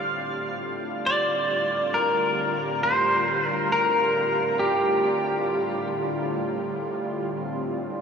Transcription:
Already playing: A2 D3 G3 C4 F4 F5
1.06 D5
1.94 A#4
2.83 C5
3.48 A#4
3.72 A#4
4.59 G4
6.36 A2
6.49 G3
6.56 D3
7.31 C4

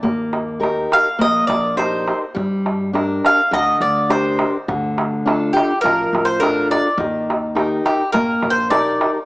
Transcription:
0.03 D#2 A#3, darbuka dum
0.19 darbuka tek
0.33 darbuka tek
0.48 darbuka tek
0.60 D#4 G4 A#4, darbuka tek
0.92 F5, darbuka tek
1.19 A#1 A#3 D#5, darbuka tek
1.35 darbuka tek
1.47 A#1 D5, darbuka tek
1.77 D#4 G4 A#4 C5, darbuka tek
1.94 darbuka tek
2.07 darbuka tek
2.35 G2 G3, darbuka dum
2.51 darbuka tek
2.66 darbuka tek
2.80 darbuka tek
2.93 D4 G4 A#4, darbuka tek
3.25 F5, darbuka tek
3.51 D2 D3 D#5, darbuka tek
3.67 darbuka tek
3.80 D2 D5
4.09 D4 G4 A#4 C5, darbuka tek
4.24 darbuka tek
4.39 darbuka tek
4.68 D2 D3, darbuka dum
4.84 darbuka tek
4.98 darbuka tek
5.13 darbuka tek
5.26 D4 F4 A4, darbuka tek
5.53 G4, darbuka tek
5.81 A1 F3 A#4
5.85 darbuka tek
6.00 darbuka tek
6.13 A1, darbuka tek
6.25 C5
6.40 D4 F4 A4 A#4, darbuka tek
6.58 darbuka tek
6.71 D5, darbuka tek
6.97 D#2 D#3, darbuka dum
7.16 darbuka tek
7.30 darbuka tek
7.43 darbuka tek
7.55 D#4 G4 A#4, darbuka tek
7.86 G4, darbuka tek
8.00 darbuka tek
8.12 A#1 A#3 A#4, darbuka tek, darbuka dum
8.29 darbuka tek
8.42 A#1, darbuka tek
8.50 C5
8.58 darbuka tek
8.70 D#4 G4 A#4 D5, darbuka tek
8.87 darbuka tek
9.01 darbuka tek
9.16 darbuka tek

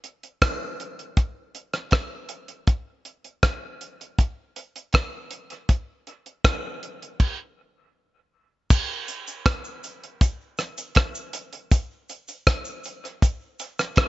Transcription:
0.04 closed hi-hat
0.23 closed hi-hat
0.42 kick, cross-stick, closed hi-hat
0.80 closed hi-hat
0.99 closed hi-hat
1.17 kick, closed hi-hat
1.55 closed hi-hat
1.73 cross-stick, closed hi-hat
1.91 kick, cross-stick, closed hi-hat
2.29 closed hi-hat
2.48 closed hi-hat
2.67 kick, closed hi-hat
3.05 closed hi-hat
3.24 closed hi-hat
3.43 kick, cross-stick, closed hi-hat
3.81 closed hi-hat
4.01 closed hi-hat
4.19 kick, closed hi-hat
4.56 closed hi-hat
4.76 closed hi-hat
4.93 kick, cross-stick, closed hi-hat
5.31 closed hi-hat
5.50 closed hi-hat
5.69 kick, closed hi-hat
6.07 closed hi-hat
6.26 closed hi-hat
6.44 kick, cross-stick, closed hi-hat
6.83 closed hi-hat
7.02 closed hi-hat
7.20 kick, crash
8.70 kick, crash, cabasa
9.08 closed hi-hat, cabasa
9.27 closed hi-hat, cabasa
9.46 kick, cross-stick, closed hi-hat
9.64 cabasa
9.84 closed hi-hat, cabasa
10.04 closed hi-hat
10.21 kick, closed hi-hat, cabasa
10.58 cross-stick, closed hi-hat, cabasa
10.78 closed hi-hat, cabasa
10.95 kick, cross-stick, closed hi-hat
11.15 cabasa
11.33 closed hi-hat, cabasa
11.53 closed hi-hat
11.72 kick, closed hi-hat, cabasa
12.09 closed hi-hat, cabasa
12.28 closed hi-hat, cabasa
12.47 kick, cross-stick, closed hi-hat
12.65 cabasa
12.84 closed hi-hat, cabasa
13.05 closed hi-hat
13.22 kick, closed hi-hat, cabasa
13.59 closed hi-hat, cabasa
13.79 cross-stick, closed hi-hat, cabasa
13.96 kick, cross-stick, closed hi-hat

